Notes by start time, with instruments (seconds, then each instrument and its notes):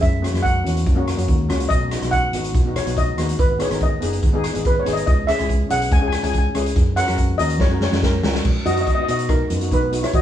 0.01 fingered electric bass F#2, steel pan E5, kick, closed hi-hat
0.22 steel pan A#3 C#4 F#4, cross-stick, closed hi-hat
0.33 fingered electric bass F#2, steel pan A#3 C#4 F#4, cross-stick, closed hi-hat
0.43 steel pan F#5, kick, closed hi-hat
0.64 fingered electric bass E2, steel pan A#3 C#4 F#4, closed hi-hat
0.77 closed hi-hat
0.86 fingered electric bass F#2, kick, closed hi-hat
0.95 steel pan A#3 C#4 F#4
1.08 cross-stick, closed hi-hat
1.16 fingered electric bass F#2, steel pan A#3 C#4 F#4, closed hi-hat
1.28 fingered electric bass D#2, kick, closed hi-hat
1.49 fingered electric bass C#2, steel pan A#3 C#4 F#4, cross-stick, closed hi-hat
1.60 closed hi-hat
1.69 fingered electric bass B1, steel pan D#5, kick, closed hi-hat
1.91 steel pan B3 D#4 F#4, cross-stick, closed hi-hat
2.02 fingered electric bass B1, steel pan B3 D#4 F#4, cross-stick, closed hi-hat
2.11 steel pan F#5, kick, closed hi-hat
2.32 fingered electric bass G#1, steel pan B3 D#4 F#4, closed hi-hat
2.44 closed hi-hat
2.54 fingered electric bass B1, kick, closed hi-hat
2.65 steel pan B3 D#4 F#4
2.76 steel pan C#5, cross-stick, closed hi-hat
2.86 fingered electric bass B1, steel pan B3 D#4 F#4, closed hi-hat
2.97 steel pan D#5, kick, closed hi-hat
3.17 fingered electric bass D#2, steel pan B3 D#4 F#4, cross-stick, closed hi-hat
3.29 closed hi-hat
3.39 fingered electric bass G#1, steel pan B4, kick, closed hi-hat
3.59 steel pan B3 D#4 G#4 C#5, cross-stick, closed hi-hat
3.70 fingered electric bass G#1, steel pan B3 D#4 A#4, cross-stick, closed hi-hat
3.80 steel pan D#5, kick, closed hi-hat
4.01 fingered electric bass F#1, steel pan B3 D#4 G#4, closed hi-hat
4.13 closed hi-hat
4.23 fingered electric bass G#1, kick, closed hi-hat
4.33 steel pan B3 D#4 G#4
4.44 cross-stick, closed hi-hat
4.54 fingered electric bass G#1, steel pan B3 D#4 G#4, closed hi-hat
4.65 steel pan B4, kick, closed hi-hat
4.80 steel pan C#5
4.85 fingered electric bass G#1, steel pan B3 D#4 G#4, cross-stick, closed hi-hat
4.93 steel pan D#5, closed hi-hat
5.06 fingered electric bass C#2, steel pan D#5, kick, closed hi-hat
5.27 steel pan C#4 E4 G#4 E5, cross-stick, closed hi-hat
5.38 fingered electric bass C#2, steel pan C#4 E4 G#4, cross-stick, closed hi-hat
5.49 kick, closed hi-hat
5.69 fingered electric bass B1, steel pan C#4 E4 G#4 F#5, closed hi-hat
5.81 closed hi-hat
5.91 fingered electric bass C#2, steel pan G#5, kick, closed hi-hat
6.00 steel pan C#4 E4 G#4 G#5
6.08 steel pan G#5
6.12 steel pan G#5, cross-stick, closed hi-hat
6.23 fingered electric bass C#2, steel pan C#4 E4 G#4 G#5, closed hi-hat
6.30 steel pan G#5
6.34 kick, closed hi-hat
6.38 steel pan G#5
6.54 fingered electric bass C#2, steel pan C#4 E4 G#4, cross-stick, closed hi-hat
6.66 closed hi-hat
6.76 fingered electric bass F#2, kick, closed hi-hat
6.96 steel pan C#4 F#4 A#4 F#5, cross-stick, closed hi-hat
7.07 fingered electric bass F#2, steel pan C#4 F#4 A#4, cross-stick, closed hi-hat
7.18 kick, closed hi-hat
7.38 fingered electric bass D#2, steel pan C#4 F#4 A#4 D#5, closed hi-hat
7.50 closed hi-hat
7.59 fingered electric bass F#2, steel pan C#5, kick, snare
7.70 steel pan C#4 F#4 A#4
7.81 steel pan C#5, snare
7.91 fingered electric bass F#2, steel pan C#4 F#4 A#4, snare
8.03 steel pan A#4, kick, snare
8.23 fingered electric bass C#2, steel pan C#4 F#4 A#4, snare
8.35 snare
8.45 fingered electric bass B1, kick, crash
8.65 fingered electric bass F#2, steel pan B3 D#4 F#4 D#5, closed hi-hat
8.73 steel pan D#5, closed hi-hat
8.81 steel pan D#5
8.87 steel pan D#5, kick, closed hi-hat
8.95 steel pan B3 D#4 F#4 D#5
9.03 steel pan D#5
9.07 fingered electric bass B2, steel pan B3 D#4 F#4 D#5, closed hi-hat
9.19 closed hi-hat
9.29 steel pan D#4 A#4, kick, cross-stick, closed hi-hat
9.50 fingered electric bass F#2, steel pan B3 D#4 F#4, closed hi-hat
9.61 steel pan B3 D#4 F#4, closed hi-hat
9.71 fingered electric bass B1, steel pan D#4 B4, kick, closed hi-hat
9.91 steel pan B3 D#4 F#4, closed hi-hat
10.03 steel pan E4 C#5, cross-stick, closed hi-hat
10.13 fingered electric bass G#1, steel pan F#4 D#5, kick, closed hi-hat